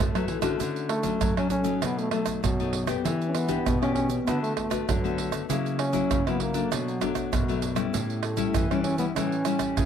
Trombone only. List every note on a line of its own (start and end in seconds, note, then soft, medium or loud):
0.89 1.33 A3 medium
1.38 1.50 C#4 medium
1.51 1.85 C#4 medium
1.84 2.01 B3 medium
2.00 2.11 A3 medium
2.12 2.41 A3 medium
2.44 2.87 F#3 medium
3.28 3.35 C#4 medium
3.34 3.81 B3 medium
3.82 3.94 C#4 loud
3.94 4.09 C#4 medium
4.26 4.41 B3 medium
4.43 4.55 A3 medium
4.56 4.85 A3 medium
4.88 5.31 F#3 medium
5.79 6.29 C#4 loud
6.27 6.42 B3 medium
6.40 6.71 A#3 medium
6.73 7.60 F#3 medium
8.23 8.72 A3 medium
8.71 8.83 C#4 medium
8.84 8.98 C#4 medium
8.98 9.06 B3 medium
9.16 9.85 C#4 medium